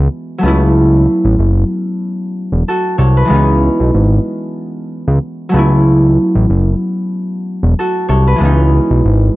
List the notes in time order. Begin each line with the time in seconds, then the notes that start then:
Already playing: E3 G#3 B3 C#4 D#4 B4
0.38 F#3 A3
0.43 C#2 B3 C#4
0.48 E4
1.25 A1
1.39 F#1
2.52 E1
2.68 F#4 A4
2.98 C2 A4 C#5
3.17 B4
3.25 E3 G#3
3.30 C#2 B3 C#4
3.34 D#4
3.80 B1
3.94 G#1
5.08 C#2
5.49 F#3 A3
5.54 C#2 B3 C#4
5.58 E4
6.35 A1
6.50 F#1
7.63 E1
7.79 F#4 A4
8.08 C2 A4 C#5
8.27 B4
8.36 E3 G#3
8.40 C#2 B3 C#4
8.45 D#4
8.91 B1
9.05 G#1